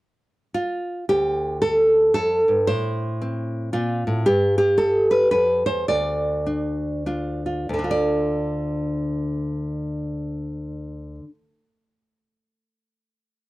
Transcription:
0.54 F4
1.09 D2 G4
1.62 A4
2.14 F2 A4
2.48 G2
2.67 A2 C5
3.21 C4
3.73 A#2 F4
4.07 A2
4.26 G2 G4
4.58 G4
4.78 A4
5.11 B4
5.31 F2 B4
5.66 E2 C5
5.88 D2 D5
6.46 D4
7.06 D4 F4
7.46 F4
7.69 D2
7.74 D3
7.79 D4
7.84 F4
7.91 D5

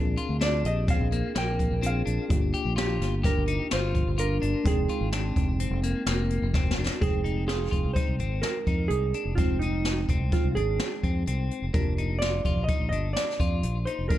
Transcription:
Already playing: A#1 C4 D4 F4 G#4
0.17 F4, closed hi-hat
0.29 D2
0.41 D4 F4 D5, snare, closed hi-hat
0.65 A#1 G4 D#5, closed hi-hat
0.88 C4 G#4 F5, kick, closed hi-hat
1.00 A#1
1.12 A#3, closed hi-hat
1.35 A#1 A#3 A#4 G5, snare, closed hi-hat
1.59 kick, closed hi-hat
1.72 A#1
1.82 C4 D4 F4 G#4 A#4, closed hi-hat
1.86 F5
2.06 A#1 D4, closed hi-hat
2.28 G1 A#3 D4 F4 G4, kick, closed hi-hat
2.54 G4, closed hi-hat
2.65 A#1
2.76 A#3 F4 G4, snare, closed hi-hat
3.00 G1, snare, closed hi-hat
3.23 D4 G4 A#4, kick, snare, closed hi-hat
3.37 G1
3.48 D#4, closed hi-hat
3.71 G1 F4 C5, snare, closed hi-hat
3.95 kick, closed hi-hat
4.07 G1
4.18 D4 F4 A#4, closed hi-hat
4.42 G1 D4, closed hi-hat
4.64 F1 G#3 C4 D#4 G#4 G5, kick, closed hi-hat
4.89 F4, closed hi-hat
5.01 G#1
5.12 D4, snare, closed hi-hat
5.36 F1, kick, closed hi-hat
5.60 C4, closed hi-hat
5.70 F1
5.83 A#3, closed hi-hat
6.06 F1 A#3, snare, closed hi-hat
6.30 closed hi-hat
6.42 F1
6.54 C4, kick, snare
6.71 snare
6.77 F1 D4
6.86 snare
7.00 F1 G#3 C4 D#4 G#4 G5, kick, closed hi-hat
7.24 D#4, closed hi-hat
7.48 F4 G#4, snare, closed hi-hat
7.71 F1 F4, kick, closed hi-hat
7.85 C2
7.93 D#4 C5, kick, closed hi-hat
8.08 C2
8.19 G#1 C4, closed hi-hat
8.42 A#4, snare, closed hi-hat
8.67 F2 D#4, kick, closed hi-hat
8.88 C2 G#4, closed hi-hat
9.14 D4, closed hi-hat
9.25 F1
9.35 G#3 C4 D#4 F4 G5, kick, closed hi-hat
9.59 D#4, closed hi-hat
9.85 snare, closed hi-hat
10.09 F1 C4, kick, closed hi-hat
10.20 C2
10.32 F4, kick, closed hi-hat
10.44 C2
10.55 G#1 D4 G#4, closed hi-hat
10.80 snare, closed hi-hat
11.03 F2 C4, kick, closed hi-hat
11.27 C2 C4, closed hi-hat
11.51 closed hi-hat
11.62 F1
11.74 F1 A#3 D4 F4 G4 A#4, kick, closed hi-hat
11.98 D#4, closed hi-hat
12.19 F4 D5, snare, closed hi-hat
12.45 F1 F4, kick, closed hi-hat
12.56 A#1
12.64 D#5
12.68 D#4, kick, closed hi-hat
12.80 A#1
12.89 G1 D4 D#5, closed hi-hat
13.13 D5, snare, closed hi-hat
13.40 F2 F4, kick, closed hi-hat
13.63 A#1, closed hi-hat
13.85 D#4 C5, closed hi-hat
13.99 F1
14.09 A#3 D4 F4 A#4, kick, closed hi-hat

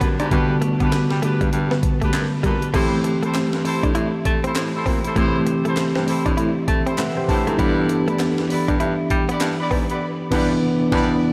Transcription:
Already playing: D3 G3 B3 F#4
0.01 F#2 B3, kick, closed hi-hat
0.20 G#2 D4 F#4 G4 B4, closed hi-hat
0.30 G2 D3 G3 B3 D4 F#4 G4 B4, kick, closed hi-hat
0.50 muted clean electric guitar stroke
0.62 A3, closed hi-hat
0.80 G2 B3 D4 F#4 G4 B4, kick, closed hi-hat
0.92 G3, muted clean electric guitar stroke, snare, clap, closed hi-hat
1.10 G3, snare
1.22 A3 D4 F#4 G4 B4, closed hi-hat
1.41 G2 G3, kick, closed hi-hat
1.53 G2, closed hi-hat
1.71 B3, snare
1.83 muted clean electric guitar stroke, kick, closed hi-hat
2.01 A3 D4 F#4 G4 B4, kick, closed hi-hat
2.13 F#2, snare, clap, closed hi-hat
2.43 A#2 G3 D4 F#4 G4 B4, kick, closed hi-hat
2.62 closed hi-hat
2.73 A2 E3 A3 C4 E4 G4 A4 C5, kick, closed hi-hat, crash
3.04 muted clean electric guitar stroke, closed hi-hat
3.22 A3 E4 G4 A4 C5, closed hi-hat
3.35 G2 C4, snare, clap, closed hi-hat
3.53 G2, snare
3.64 E4 G4 A4 C5, muted clean electric guitar stroke, open hi-hat
3.83 A2 D4, kick, closed hi-hat
3.95 A2 E4, closed hi-hat
4.25 A3, muted clean electric guitar stroke, kick, closed hi-hat
4.44 C4 E4 G4 A4 C5, closed hi-hat
4.56 A2, snare, clap, closed hi-hat
4.74 E4 G4 A4 C5
4.86 A#2 C4, kick, open hi-hat
5.04 E4 G4 A4 C5, closed hi-hat
5.16 A2 E3 A3 C4 E4 G4 A4 C5, kick, closed hi-hat
5.47 muted clean electric guitar stroke, closed hi-hat
5.65 A3 E4 G4 A4 C5, closed hi-hat
5.77 G2, snare, clap, closed hi-hat
5.95 G2 C4, snare
6.07 E4 G4 A4 C5, muted clean electric guitar stroke, open hi-hat
6.26 A2 D4, kick, closed hi-hat
6.37 A2 E4, closed hi-hat
6.68 A3 E5, muted clean electric guitar stroke, kick, closed hi-hat
6.86 C4 E4 G4 A4 C5, closed hi-hat
6.98 A3 B4 E5 F#5, snare, clap, closed hi-hat
7.17 G4 C5 G5, muted clean electric guitar stroke
7.28 A2 D4 E4 G4 A4 C5 A5, kick, open hi-hat
7.47 G#2 A3 E4 A4, closed hi-hat
7.58 G2 E3 G3 B3 D4 E4 G4 B4 D5, kick, closed hi-hat
7.89 muted clean electric guitar stroke, closed hi-hat
8.07 A3 E4 G4 B4 D5, closed hi-hat
8.19 E2 B3, snare, clap, closed hi-hat
8.38 E2, snare
8.49 E4 G4 B4 D5, muted clean electric guitar stroke, open hi-hat
8.68 G2 D4, kick, closed hi-hat
8.80 G2 E4, closed hi-hat
9.10 G3, muted clean electric guitar stroke, kick, closed hi-hat
9.29 B3 E4 G4 B4 D5, closed hi-hat
9.41 G2, snare, clap, closed hi-hat
9.59 E4 G4 B4 D5
9.71 G#2 B3, kick, open hi-hat
9.89 E4 G4 B4 D5, closed hi-hat
10.31 G2 E3 B3 D4 E4 G4 B4 D5, kick, snare, crash
10.91 G2 E3 B3 D4 E4 G4 B4 D5, kick, snare

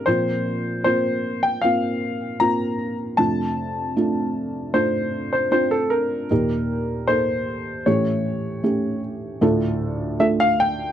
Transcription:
0.06 A#2 F3 A#3 C4 F4 C5
0.84 A#3 C4 F4 C5
1.43 G5
1.61 A#3 C4 F4 F5
2.40 A#3 C4 F4 A#5
3.17 F2 C3 A3 D4 F4 A5
3.97 A3 D4 F4
4.74 A3 D4 F4 C5
5.33 C5
5.51 C4 D4 F4 C5
5.71 A4
5.90 A#4
6.30 D#2 A#2 A#3 D#4 G4
7.08 A#3 D#4 A4 C5
7.86 A2 E3 A3 C#4 G4 C#5
8.63 A3 C#4 G4
9.41 D2 A2 A3 D4 F4 A4
10.20 A3 D4 F4 A4 E5
10.40 F5
10.60 G5

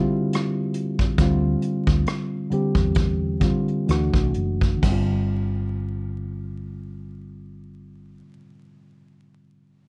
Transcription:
Already playing: D3 G3 C4 E4 F#4 G4
0.00 F4
0.33 cross-stick, closed hi-hat
0.74 closed hi-hat
0.99 kick
1.18 D2 D3 G3 C4 F4, kick, closed hi-hat
1.62 closed hi-hat
1.87 D2, kick, closed hi-hat
2.06 cross-stick, closed hi-hat
2.50 D3 G3 C4 G4, muted fretless electric bass stroke, closed hi-hat
2.75 E2, kick
2.95 kick, closed hi-hat
3.40 D3 G3 C4 F4, kick, closed hi-hat
3.68 closed hi-hat
3.87 D2 E3 A3 D4 F#4, cross-stick, closed hi-hat
4.14 C2, kick
4.34 F#1, closed hi-hat
4.61 kick, closed hi-hat
4.77 D3
4.82 G1 G3, kick, crash
4.87 C4
4.92 F4

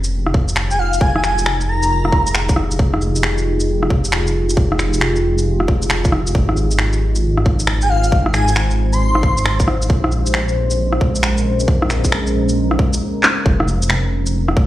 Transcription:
Already playing: F1 D#4 F4 G4 G#4
0.04 shaker
0.26 cross-stick
0.34 kick
0.48 shaker
0.56 finger snap
0.71 G#5, shaker
0.79 F5
0.93 shaker
1.00 G#5, kick
1.15 G#5, cross-stick
1.23 G#5, finger snap, shaker
1.38 shaker
1.46 finger snap
1.61 shaker
1.68 A#5
1.83 shaker
2.05 cross-stick
2.12 kick
2.27 shaker
2.35 finger snap
2.49 kick, shaker
2.56 cross-stick
2.71 shaker
2.79 kick
2.94 cross-stick
3.01 shaker
3.16 shaker
3.23 finger snap
3.38 shaker
3.60 shaker
3.83 cross-stick
3.90 kick
4.05 shaker
4.12 finger snap
4.27 shaker
4.50 shaker
4.57 kick
4.72 cross-stick
4.79 finger snap, shaker
4.93 shaker
5.01 finger snap
5.16 shaker
5.38 shaker
5.60 cross-stick
5.68 kick
5.82 shaker
5.90 finger snap
6.05 kick, shaker
6.12 cross-stick
6.27 shaker
6.34 G#1 G#3 C5, kick
6.49 cross-stick
6.57 shaker
6.71 shaker
6.79 finger snap
6.93 shaker
7.15 shaker
7.37 cross-stick
7.46 kick
7.59 shaker
7.67 finger snap
7.81 G#5, shaker
7.89 F5
8.04 shaker
8.12 G4, kick
8.26 cross-stick
8.33 G#5, finger snap, shaker
8.48 shaker
8.56 finger snap
8.71 shaker
8.92 C6, shaker
9.15 cross-stick
9.23 kick
9.38 shaker
9.46 finger snap
9.60 kick, shaker
9.68 cross-stick
9.82 shaker
9.90 A#1 G#3 C#4 A#4, kick
10.04 cross-stick
10.12 shaker
10.26 shaker
10.34 finger snap
10.48 shaker
10.71 shaker
10.93 cross-stick
11.01 kick
11.15 shaker
11.23 finger snap
11.38 shaker
11.60 shaker
11.68 kick
11.82 cross-stick
11.90 finger snap, shaker
12.04 kick, shaker
12.12 finger snap
12.27 shaker
12.49 shaker
12.71 cross-stick
12.79 kick
12.93 shaker
13.23 clap
13.45 F1 D#4 F4 G4 G#4, kick
13.60 cross-stick
13.68 shaker
13.82 shaker
13.90 finger snap
14.26 shaker
14.48 cross-stick
14.57 kick

